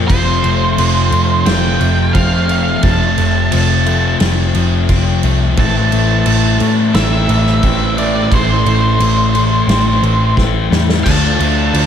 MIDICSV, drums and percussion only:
0, 0, Header, 1, 2, 480
1, 0, Start_track
1, 0, Tempo, 684932
1, 65, Time_signature, 4, 2, 24, 8
1, 8313, End_track
2, 0, Start_track
2, 0, Title_t, "Drums"
2, 67, Note_on_c, 9, 36, 113
2, 68, Note_on_c, 9, 49, 86
2, 137, Note_off_c, 9, 36, 0
2, 138, Note_off_c, 9, 49, 0
2, 307, Note_on_c, 9, 49, 62
2, 377, Note_off_c, 9, 49, 0
2, 547, Note_on_c, 9, 49, 90
2, 618, Note_off_c, 9, 49, 0
2, 786, Note_on_c, 9, 49, 61
2, 856, Note_off_c, 9, 49, 0
2, 1024, Note_on_c, 9, 49, 83
2, 1028, Note_on_c, 9, 38, 105
2, 1094, Note_off_c, 9, 49, 0
2, 1099, Note_off_c, 9, 38, 0
2, 1265, Note_on_c, 9, 49, 57
2, 1335, Note_off_c, 9, 49, 0
2, 1504, Note_on_c, 9, 49, 81
2, 1505, Note_on_c, 9, 36, 82
2, 1574, Note_off_c, 9, 49, 0
2, 1575, Note_off_c, 9, 36, 0
2, 1746, Note_on_c, 9, 49, 63
2, 1816, Note_off_c, 9, 49, 0
2, 1981, Note_on_c, 9, 49, 78
2, 1985, Note_on_c, 9, 36, 105
2, 2051, Note_off_c, 9, 49, 0
2, 2055, Note_off_c, 9, 36, 0
2, 2226, Note_on_c, 9, 49, 60
2, 2296, Note_off_c, 9, 49, 0
2, 2466, Note_on_c, 9, 49, 97
2, 2536, Note_off_c, 9, 49, 0
2, 2708, Note_on_c, 9, 49, 66
2, 2778, Note_off_c, 9, 49, 0
2, 2944, Note_on_c, 9, 49, 84
2, 2948, Note_on_c, 9, 38, 117
2, 3014, Note_off_c, 9, 49, 0
2, 3018, Note_off_c, 9, 38, 0
2, 3186, Note_on_c, 9, 49, 64
2, 3256, Note_off_c, 9, 49, 0
2, 3426, Note_on_c, 9, 49, 85
2, 3427, Note_on_c, 9, 36, 84
2, 3496, Note_off_c, 9, 49, 0
2, 3497, Note_off_c, 9, 36, 0
2, 3664, Note_on_c, 9, 49, 64
2, 3734, Note_off_c, 9, 49, 0
2, 3905, Note_on_c, 9, 49, 82
2, 3907, Note_on_c, 9, 36, 118
2, 3975, Note_off_c, 9, 49, 0
2, 3977, Note_off_c, 9, 36, 0
2, 4149, Note_on_c, 9, 49, 67
2, 4219, Note_off_c, 9, 49, 0
2, 4385, Note_on_c, 9, 49, 96
2, 4455, Note_off_c, 9, 49, 0
2, 4626, Note_on_c, 9, 49, 62
2, 4696, Note_off_c, 9, 49, 0
2, 4867, Note_on_c, 9, 49, 84
2, 4871, Note_on_c, 9, 38, 114
2, 4937, Note_off_c, 9, 49, 0
2, 4941, Note_off_c, 9, 38, 0
2, 5108, Note_on_c, 9, 49, 61
2, 5178, Note_off_c, 9, 49, 0
2, 5232, Note_on_c, 9, 38, 35
2, 5302, Note_off_c, 9, 38, 0
2, 5346, Note_on_c, 9, 49, 77
2, 5347, Note_on_c, 9, 36, 84
2, 5417, Note_off_c, 9, 36, 0
2, 5417, Note_off_c, 9, 49, 0
2, 5592, Note_on_c, 9, 49, 63
2, 5662, Note_off_c, 9, 49, 0
2, 5828, Note_on_c, 9, 36, 111
2, 5830, Note_on_c, 9, 49, 80
2, 5898, Note_off_c, 9, 36, 0
2, 5900, Note_off_c, 9, 49, 0
2, 6070, Note_on_c, 9, 49, 60
2, 6140, Note_off_c, 9, 49, 0
2, 6309, Note_on_c, 9, 49, 85
2, 6379, Note_off_c, 9, 49, 0
2, 6551, Note_on_c, 9, 49, 63
2, 6621, Note_off_c, 9, 49, 0
2, 6791, Note_on_c, 9, 49, 80
2, 6795, Note_on_c, 9, 38, 112
2, 6861, Note_off_c, 9, 49, 0
2, 6865, Note_off_c, 9, 38, 0
2, 7031, Note_on_c, 9, 49, 61
2, 7101, Note_off_c, 9, 49, 0
2, 7269, Note_on_c, 9, 36, 85
2, 7274, Note_on_c, 9, 38, 64
2, 7339, Note_off_c, 9, 36, 0
2, 7344, Note_off_c, 9, 38, 0
2, 7515, Note_on_c, 9, 38, 96
2, 7585, Note_off_c, 9, 38, 0
2, 7635, Note_on_c, 9, 38, 98
2, 7705, Note_off_c, 9, 38, 0
2, 7749, Note_on_c, 9, 36, 112
2, 7751, Note_on_c, 9, 49, 90
2, 7751, Note_on_c, 9, 57, 127
2, 7820, Note_off_c, 9, 36, 0
2, 7821, Note_off_c, 9, 49, 0
2, 7821, Note_off_c, 9, 57, 0
2, 7991, Note_on_c, 9, 49, 70
2, 8062, Note_off_c, 9, 49, 0
2, 8230, Note_on_c, 9, 49, 98
2, 8300, Note_off_c, 9, 49, 0
2, 8313, End_track
0, 0, End_of_file